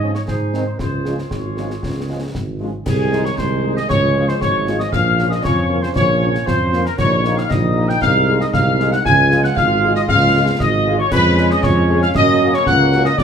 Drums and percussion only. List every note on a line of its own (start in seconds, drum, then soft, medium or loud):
0.15 snare soft
0.28 concert bass drum medium
0.28 snare medium
0.54 snare soft
0.79 concert bass drum medium
0.79 snare medium
1.05 snare soft
1.18 snare soft
1.31 concert bass drum medium
1.31 snare medium
1.57 snare soft
1.70 snare soft
1.83 concert bass drum medium
1.83 snare medium
2.35 concert bass drum medium
2.35 snare medium
2.86 concert bass drum medium
2.86 snare medium
2.86 crash medium
3.13 snare medium
3.25 snare medium
3.38 concert bass drum medium
3.38 snare medium
3.77 snare medium
3.90 concert bass drum medium
3.90 snare medium
4.28 snare medium
4.41 concert bass drum medium
4.41 snare medium
4.67 snare medium
4.80 snare medium
4.93 concert bass drum medium
4.93 snare medium
5.19 snare medium
5.32 snare medium
5.44 concert bass drum medium
5.44 snare medium
5.83 snare medium
5.96 concert bass drum medium
5.96 snare medium
6.35 snare medium
6.47 concert bass drum medium
6.47 snare medium
6.73 snare medium
6.86 snare medium
6.99 concert bass drum medium
6.99 snare medium
6.99 crash soft
7.24 snare medium
7.38 snare soft
7.51 concert bass drum medium
7.51 snare medium
7.89 snare medium
8.02 concert bass drum medium
8.02 snare medium
8.41 snare medium
8.54 concert bass drum medium
8.54 snare medium
8.80 snare medium
8.93 snare medium
9.05 concert bass drum medium
9.05 snare medium
9.31 snare medium
9.44 snare medium
9.57 concert bass drum medium
9.57 snare medium
9.95 snare medium
10.09 concert bass drum medium
10.09 snare medium
10.60 concert bass drum medium
10.60 snare medium
11.12 concert bass drum medium
11.12 snare medium
11.12 crash medium
11.38 snare medium
11.51 snare medium
11.63 concert bass drum medium
11.63 snare medium
12.02 snare medium
12.15 concert bass drum medium
12.15 snare medium
12.54 snare medium
12.66 concert bass drum medium
12.66 snare medium
12.92 snare medium
13.05 snare medium
13.18 concert bass drum medium
13.18 snare medium